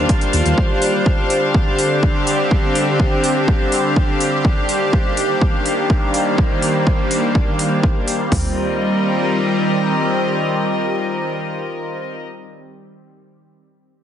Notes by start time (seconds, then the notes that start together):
Already playing: D#3 G3 A#3 D4 F4 G4 C5 F5
0.09 kick, closed hi-hat
0.21 closed hi-hat
0.33 D#2, open hi-hat
0.46 D#2, closed hi-hat
0.58 D3 C4 G4, kick
0.82 open hi-hat
1.06 kick
1.30 open hi-hat
1.54 kick
1.79 open hi-hat
2.03 kick
2.27 open hi-hat
2.51 kick
2.75 open hi-hat
3.00 kick
3.24 open hi-hat
3.48 kick
3.72 open hi-hat
3.96 kick
4.21 open hi-hat
4.45 D#3 G3 A#3, kick
4.69 open hi-hat
4.93 kick
5.17 open hi-hat
5.41 kick
5.66 open hi-hat
5.90 kick
6.14 open hi-hat
6.38 kick
6.62 open hi-hat
6.87 kick
7.11 open hi-hat
7.35 kick
7.59 open hi-hat
7.83 kick
8.08 open hi-hat
8.32 D#3 G3 C4 G4, kick, floor tom, open hi-hat
8.39 F4
8.46 A#4
8.53 D#5